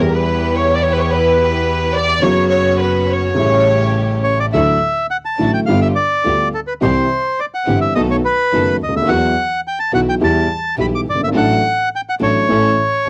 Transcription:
Already playing: upright piano E3 G3, string section B3 E4 G4
0.00 double bass E2, upright piano E2 B3 G4, violin section A#4
0.15 violin section B4
0.56 violin section C#5
0.75 violin section D5
0.83 violin section C#5
0.93 violin section B4
0.99 violin section C#5
1.12 violin section B4
1.95 violin section D5
2.22 double bass F#1, upright piano F#2 C#3 F#3 B3 F#4, string section B3 C#4 F#4, violin section C#5
2.51 violin section C#5
2.81 violin section B4
3.09 violin section C#5
3.34 upright piano A1 A2 C#3 G3 A3 E4, double bass A1, string section A3 C#4 G4
4.24 bandoneon C#5
4.40 bandoneon D5
4.52 double bass D2, upright piano D2 D3 F#3 A3 E4, string section D4 E4 F#4, bandoneon E5
5.11 bandoneon F#5
5.25 bandoneon A5
5.39 upright piano A1 A2 D3 F#3 A3 E4, double bass A1, string section D4 E4 F#4
5.54 bandoneon G5
5.66 double bass G1, upright piano G1 G2 D3 G3 B3 F4, string section B3 F4 G4, bandoneon F5
5.82 bandoneon E5
5.96 bandoneon D5
6.24 double bass D2, upright piano D2 D3 G3 B3 F4, string section B3 F4 G4
6.54 bandoneon A4
6.67 bandoneon B4
6.81 upright piano C2 C3 E3 G3 C4 G4, double bass C2, string section C4 E4 G4, bandoneon C5
7.40 bandoneon D5
7.54 bandoneon F#5
7.66 double bass G1, upright piano G1 G2 E3 G3 C4 G4, string section C4 E4 G4
7.81 bandoneon E5
7.95 double bass B1, upright piano B1 B2 D#3 A3 B3 F#4, string section B3 D#4 A4, bandoneon D#5
8.11 bandoneon C#5
8.25 bandoneon B4
8.52 double bass F#1, upright piano F#1 F#2 D#3 A3 B3 F#4, string section B3 D#4 A4
8.80 double bass D2, bandoneon D#5
8.88 upright piano C#2
8.96 upright piano D2, bandoneon E5
9.02 upright piano D#2
9.07 double bass E2, upright piano E2 E3 F#3 B3 F#4, string section B3 E4 F#4, bandoneon F#5
9.67 bandoneon G5
9.79 bandoneon A5
9.92 double bass B1, upright piano B1 B2 E3 F#3 B3 F#4, string section B3 E4 F#4, bandoneon F#5
10.09 bandoneon G5
10.20 double bass E2, upright piano E2 E3 G3 B3 G4, string section B3 E4 G4
10.24 bandoneon A5
10.77 double bass B1, upright piano B1 B2 E3 G3 B3 G4, string section B3 E4 G4, bandoneon B5
10.95 bandoneon D6
11.07 double bass G1, bandoneon D5
11.14 upright piano F#1
11.20 upright piano G1, bandoneon E5
11.27 upright piano G#1
11.34 upright piano A1 A2 F#3 A3 D4 A4, double bass A1, string section D4 F#4 A4, bandoneon F#5
11.96 bandoneon G5
12.09 bandoneon F#5
12.20 upright piano A1 A2 F#3 A3 D4 A4, double bass A1, string section D4 F#4 A4, bandoneon C#5
12.49 double bass A1, upright piano A1 A2 E3 A3 C#4 A4, string section C#4 E4 A4

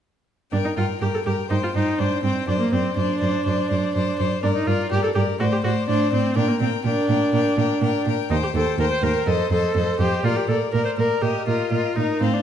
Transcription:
0.52 cello G2, viola D4, violin A#4 G5
0.65 viola D#4
0.77 cello G2, viola F4, violin A#4 G5
1.01 cello G2, viola G4, violin A#4 G5
1.14 viola A4
1.26 cello G2, viola G4, violin A#4 G5
1.50 cello G2, viola D#4, violin C5 G5
1.63 viola F4
1.75 cello G2, viola D#4, violin C5 G5
1.98 cello G2, viola D4, violin C5 G5
2.23 cello G2, viola C4, violin C5 G5
2.48 cello F#2, viola D4, violin C5 D5
2.60 viola A#3
2.72 cello F#2, viola C4, violin C5 D5
2.97 cello F#2, viola D4, violin C5 D5
3.21 cello F#2, violin C5 D5
3.46 cello F#2, violin C5 D5
3.70 cello F#2, violin C5 D5
3.95 cello F#2, violin C5 D5
4.19 cello F#2, violin C5 D5
4.42 cello G2, viola D4, violin A#4 D5
4.55 viola D#4
4.67 cello G2, viola F4, violin A#4 D5
4.91 cello G2, viola G4, violin A#4 D5
5.03 viola A4
5.15 cello G2, viola G4, violin A#4 D5
5.40 cello A2, viola F#4, violin C5 D5
5.52 viola G4
5.64 cello A2, viola F#4, violin C5 D5
5.88 cello A2, viola D4, violin C5 D5
6.12 cello A2, viola C4, violin C5 D5
6.36 cello A#2, viola D4, violin A#4 G5
6.48 viola A#3
6.60 cello A#2, viola C4, violin A#4 G5
6.85 cello A#2, viola D4, violin A#4 G5
7.09 cello A#2, violin A#4 G5
7.33 cello A#2, violin A#4 G5
7.57 cello A#2, violin A#4 G5
7.82 cello A#2, violin A#4 G5
8.06 cello A#2, violin A#4 G5
8.31 cello D#2, viola D#4, violin C5 G5
8.43 viola G4
8.55 cello D#2, viola A4, violin C5 G5
8.79 cello D#2, viola A#4, violin C5 G5
8.91 viola C5
9.03 cello D#2, viola A#4, violin C5 G5
9.27 cello F2, viola A4, violin C5 D#5
9.51 cello F2, viola A4, violin C5 D#5
9.75 cello F2, violin C5 D#5
9.99 cello F2, viola G4, violin C5 D#5
10.24 cello A#2, viola F4, violin A#4 D5
10.36 viola G4
10.48 cello A#2, viola A4, violin A#4 D5
10.72 cello A#2, viola A#4, violin A#4 D5
10.85 viola C5
10.98 cello A#2, viola A#4, violin A#4 D5
11.22 cello A#2, viola G4, violin A#4 D#5
11.47 cello A#2, viola F4, violin A#4 D#5
11.71 cello A#2, violin A#4 D#5
11.96 cello A#2, viola D#4, violin A#4 D#5
12.21 cello A2, viola C4, violin C5 F5
12.33 viola D4

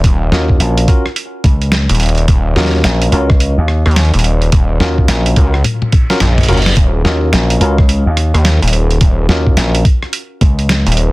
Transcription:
0.04 analog synth bass D#1, kick, closed hi-hat
0.32 slap bass D#2, tine electric piano C#4 F4 F#4 A#4, snare
0.49 kick
0.60 slap bass A#1, closed hi-hat
0.78 closed hi-hat
0.88 tine electric piano C#4 F4 F#4 A#4, kick, closed hi-hat
1.06 cross-stick
1.16 closed hi-hat
1.44 slap bass C#2, kick, closed hi-hat
1.62 closed hi-hat
1.72 snare
1.89 analog synth bass D#1, closed hi-hat
1.95 closed hi-hat
2.00 closed hi-hat
2.03 closed hi-hat
2.06 closed hi-hat
2.09 closed hi-hat
2.15 closed hi-hat
2.18 closed hi-hat
2.28 analog synth bass D#1, kick, closed hi-hat
2.56 slap bass D#2, tine electric piano C#4 F4 F#4 A#4, snare
2.60 snare
2.65 snare
2.69 snare
2.74 snare
2.76 snare
2.79 snare
2.82 slap bass A#1, snare
2.84 snare, closed hi-hat
3.02 closed hi-hat
3.12 slap bass C#2, tine electric piano C#4 F4 F#4 A#4, closed hi-hat
3.30 kick, cross-stick
3.40 closed hi-hat
3.58 slap bass D#2
3.68 cross-stick
3.86 analog synth bass D#2, cross-stick, closed hi-hat
3.91 closed hi-hat
3.96 snare, closed hi-hat
4.05 closed hi-hat
4.14 analog synth bass D#1, closed hi-hat
4.19 closed hi-hat
4.24 closed hi-hat
4.42 closed hi-hat
4.52 analog synth bass D#1, kick, closed hi-hat
4.80 slap bass D#2, tine electric piano C#4 F4 F#4 A#4, snare
4.98 kick
5.08 slap bass A#1, snare, closed hi-hat
5.26 closed hi-hat
5.36 analog synth bass C#2, tine electric piano C#4 F4 F#4 A#4, kick, closed hi-hat
5.54 cross-stick
5.64 closed hi-hat, high tom, reverse cymbal
5.82 high tom
5.92 kick, closed hi-hat
6.10 tine electric piano C#4 F4 F#4 A#4, snare, closed hi-hat
6.20 analog synth bass A#1, snare, closed hi-hat, mid tom
6.38 closed hi-hat, mid tom
6.41 closed hi-hat
6.43 closed hi-hat
6.46 closed hi-hat
6.48 analog synth bass F#1, tine electric piano C#4 F4 F#4 A#4, closed hi-hat, mid tom
6.53 closed hi-hat
6.57 closed hi-hat
6.62 closed hi-hat
6.66 snare, closed hi-hat
6.77 analog synth bass D#1, kick, closed hi-hat
7.05 slap bass D#2, tine electric piano C#4 F4 F#4 A#4, snare
7.33 slap bass A#1, snare, closed hi-hat
7.50 closed hi-hat
7.60 slap bass C#2, tine electric piano C#4 F4 F#4 A#4, closed hi-hat
7.78 kick, cross-stick
7.89 closed hi-hat
8.06 slap bass D#2
8.17 cross-stick, closed hi-hat
8.34 analog synth bass D#2, cross-stick, closed hi-hat
8.45 snare, closed hi-hat
8.62 analog synth bass D#1, closed hi-hat
8.68 closed hi-hat
8.73 closed hi-hat
8.91 closed hi-hat
9.01 analog synth bass D#1, kick, closed hi-hat
9.29 slap bass D#2, tine electric piano C#4 F4 F#4 A#4, snare
9.47 kick
9.57 slap bass A#1, snare, closed hi-hat
9.75 closed hi-hat
9.85 kick, closed hi-hat
10.03 cross-stick
10.13 closed hi-hat
10.41 slap bass C#2, kick, closed hi-hat
10.59 closed hi-hat
10.69 snare, closed hi-hat
10.87 analog synth bass D#1, closed hi-hat
10.92 closed hi-hat
10.97 closed hi-hat

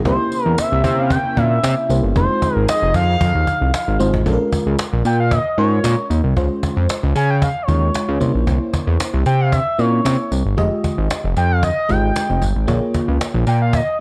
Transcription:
0.05 analog synth bass C2, analog synth pad C3 A#3 C#4 E4, fm electric piano A#3 C#4 E4 G4 C5, analog synth lead C5, cajon bass
0.19 cajon slap
0.32 cajon slap, tambourine
0.45 analog synth bass E2, analog synth lead A#4
0.58 analog synth lead E5, cajon slap, tambourine
0.72 analog synth bass C2
0.84 analog synth bass C3, cajon bass, tambourine
0.98 analog synth lead F5, cajon slap
1.10 analog synth lead G5, cajon bass, tambourine
1.24 cajon slap
1.37 analog synth bass A#2, analog synth lead E5, cajon bass
1.51 cajon slap
1.63 analog synth bass C3, cajon slap, tambourine
1.77 cajon slap
1.89 analog synth bass C2, fm electric piano A#3 C#4 E4 G4 C5, tambourine
2.03 analog synth bass G1, cajon slap
2.16 analog synth bass F1, analog synth pad F3 D#4 G#4, fm electric piano G#3 C4 D#4 F4 C5, analog synth lead C5, cajon bass
2.29 cajon slap
2.42 cajon bass, tambourine
2.56 analog synth bass G#1, cajon slap
2.68 analog synth lead D#5, cajon slap, tambourine
2.82 analog synth bass F1, cajon slap
2.94 analog synth bass F2, analog synth lead F5, cajon bass, tambourine
3.08 cajon slap
3.21 analog synth bass F2, cajon bass, tambourine
3.35 analog synth bass D#2, cajon slap
3.47 cajon bass, tambourine
3.61 analog synth bass C2, cajon slap
3.74 cajon slap, tambourine
3.87 analog synth bass G#1, cajon slap
3.99 analog synth bass G#1, fm electric piano G#3 C4 D#4 F4 C5, tambourine
4.14 analog synth bass G#1, cajon bass
4.26 analog synth bass A#1, fm electric piano G#3 C#4 F4 A4, cajon bass, tambourine
4.32 fm electric piano A#4
4.52 cajon bass, tambourine
4.66 analog synth bass C#2, cajon slap
4.79 cajon slap, tambourine
4.93 analog synth bass A#1
5.05 analog synth bass A#2, analog synth lead G5, tambourine
5.19 analog synth lead F5, cajon slap
5.31 analog synth lead D#5, cajon bass, tambourine
5.45 cajon slap
5.58 analog synth bass G#2, fm electric piano G#3 C#4 F4 A#4, analog synth lead C#5, cajon slap
5.72 cajon slap
5.84 analog synth bass A#2, cajon slap, tambourine
5.99 cajon slap
6.10 analog synth bass D#2, tambourine
6.24 analog synth bass C2
6.36 analog synth bass C#2, fm electric piano G#3 C#4 F4 C5, cajon bass
6.63 cajon bass, tambourine
6.77 analog synth bass F2, cajon slap
6.89 cajon slap, tambourine
7.03 analog synth bass C#2
7.15 analog synth bass C#3, analog synth lead G#5, tambourine
7.30 analog synth lead G5, cajon slap
7.42 analog synth lead F5, cajon bass, tambourine
7.56 cajon slap
7.62 analog synth lead C5
7.68 analog synth bass D#2, fm electric piano G#3 C#4 F4 C#5, analog synth lead C#5, cajon bass, tambourine
7.82 cajon slap
7.94 cajon slap, tambourine
8.09 analog synth bass C#2, cajon slap
8.20 analog synth bass C2, fm electric piano A#3 C#4 E4 C5, cajon bass, tambourine
8.35 analog synth bass A#1, cajon slap
8.47 analog synth bass C2, cajon bass, tambourine
8.73 cajon bass, tambourine
8.87 analog synth bass E2, cajon slap
9.00 cajon slap, tambourine
9.14 analog synth bass C2
9.26 analog synth bass C3, analog synth lead G5, tambourine
9.40 analog synth lead F5, cajon slap
9.52 analog synth lead E5, cajon bass, tambourine
9.66 cajon slap
9.78 analog synth bass A#2, fm electric piano A#3 C4 C#4 E4, analog synth lead C#5, cajon slap, tambourine
9.93 cajon slap
10.05 analog synth bass C3, cajon slap, tambourine
10.20 cajon slap
10.32 analog synth bass C2, tambourine
10.46 analog synth bass G1
10.57 analog synth bass F1, fm electric piano G#3 F4 G4 D#5, cajon bass
10.72 cajon slap
10.84 cajon bass, tambourine
10.98 analog synth bass G#1, cajon slap
11.10 cajon slap, tambourine
11.24 analog synth bass F1, cajon slap
11.37 analog synth bass F2, analog synth lead G5, cajon slap, tambourine
11.52 analog synth lead F5
11.63 analog synth lead D#5, cajon bass, tambourine
11.89 analog synth bass G#1, fm electric piano G#3 F4 G4 D#5, analog synth lead G5, cajon bass, tambourine
12.03 cajon slap
12.16 cajon slap, tambourine
12.30 analog synth bass F1, cajon slap
12.42 analog synth bass G1, cajon bass, tambourine
12.55 analog synth bass G#1, cajon slap
12.67 analog synth bass A#1, fm electric piano A#3 F4 G#4 C#5, cajon bass, tambourine
12.94 cajon bass, tambourine
13.08 analog synth bass C#2, cajon slap
13.21 cajon slap, tambourine
13.34 analog synth bass A#1
13.47 analog synth bass A#2, analog synth lead G5, tambourine
13.62 analog synth lead F5
13.73 analog synth lead D#5, cajon bass, tambourine
13.87 cajon slap

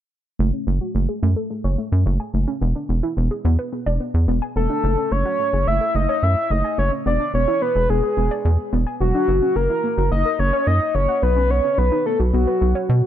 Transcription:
0.39 analog synth bass F#1, synth pluck A3
0.53 synth pluck C#4
0.67 analog synth bass F#1, synth pluck A3
0.81 synth pluck F#4
0.95 analog synth bass F#1, synth pluck A3
1.09 synth pluck G#4
1.23 analog synth bass F#2, synth pluck A3
1.36 synth pluck A4
1.50 synth pluck A3
1.64 analog synth bass F#1, synth pluck C#5
1.78 synth pluck A3
1.92 analog synth bass F#2
2.06 analog synth bass F#1, synth pluck A3
2.20 synth pluck G#5
2.34 analog synth bass F#1, synth pluck A3
2.48 synth pluck C#4
2.61 analog synth bass E1, synth pluck B3
2.75 synth pluck D4
2.89 analog synth bass E1, synth pluck B3
3.03 synth pluck E4
3.17 analog synth bass E1, synth pluck B3
3.31 synth pluck G#4
3.45 analog synth bass E2, synth pluck B3
3.59 synth pluck B4
3.73 synth pluck B3
3.86 analog synth bass E1, synth pluck D5
4.00 synth pluck B3
4.14 analog synth bass E2
4.28 analog synth bass E1, synth pluck B3
4.42 synth pluck G#5
4.56 analog synth bass E1, synth pluck B3, soft synth lead A4
4.70 synth pluck D4
4.84 analog synth bass F#1, synth pluck A3
4.98 synth pluck C#4
5.12 analog synth bass F#1, synth pluck A3, soft synth lead C#5
5.26 synth pluck F#4
5.39 synth pluck A3
5.53 analog synth bass F#1, synth pluck G#4
5.67 analog synth bass F#1, synth pluck A3, soft synth lead E5
5.81 synth pluck A4
5.95 analog synth bass F#1, synth pluck A3, soft synth lead D#5
6.09 synth pluck C#5
6.23 analog synth bass F#2, synth pluck A3, soft synth lead E5
6.50 analog synth bass F#1, synth pluck A3, soft synth lead D#5
6.64 synth pluck G#5
6.78 analog synth bass F#1, synth pluck A3, soft synth lead C#5
6.92 synth pluck C#4
7.06 analog synth bass E1, synth pluck B3, soft synth lead D5
7.20 synth pluck D4
7.34 analog synth bass E1, synth pluck B3, soft synth lead C#5
7.48 synth pluck E4
7.62 synth pluck B3, soft synth lead B4
7.76 analog synth bass E1, synth pluck G#4
7.89 analog synth bass E1, synth pluck B3, soft synth lead G#4
8.03 synth pluck B4
8.17 analog synth bass E1, synth pluck B3
8.31 synth pluck D5
8.45 analog synth bass E2, synth pluck B3
8.73 analog synth bass E1, synth pluck B3
8.87 synth pluck G#5
9.00 analog synth bass E1, synth pluck B3, soft synth lead F#4
9.14 synth pluck D4
9.28 analog synth bass F#1, synth pluck A#3
9.42 synth pluck C#4
9.56 analog synth bass F#1, synth pluck A#3, soft synth lead A#4
9.70 synth pluck E4
9.84 synth pluck A#3
9.98 analog synth bass F#1, synth pluck F#4
10.11 analog synth bass F#1, synth pluck A#3, soft synth lead D#5
10.25 synth pluck A#4
10.39 analog synth bass F#1, synth pluck A#3, soft synth lead C#5
10.53 synth pluck C#5
10.67 analog synth bass F#2, synth pluck A#3, soft synth lead D#5
10.95 analog synth bass F#1, synth pluck A#3, soft synth lead C#5
11.09 synth pluck F#5
11.22 analog synth bass B1, synth pluck B3, soft synth lead B4
11.36 synth pluck C#4
11.50 synth pluck B3, soft synth lead C#5
11.64 synth pluck C#4
11.78 analog synth bass B1, synth pluck B3, soft synth lead B4
11.92 synth pluck D#4
12.06 synth pluck B3, soft synth lead A4
12.20 analog synth bass B1, synth pluck F#4
12.33 analog synth bass B1, synth pluck B3, soft synth lead F#4
12.47 synth pluck B4
12.61 analog synth bass B1, synth pluck B3
12.75 synth pluck C#5
12.89 analog synth bass B2, synth pluck B3

